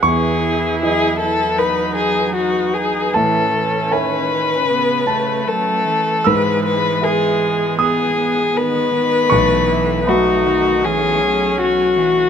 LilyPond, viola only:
\new Staff \with { instrumentName = "Viola" } { \time 4/4 \key e \major \tempo 4 = 78 e'2 dis'4 dis'4 | cis'2 b8 a4. | gis4 gis4 b8 b8 b4 | a8 e'8 dis'4 cis'2 | }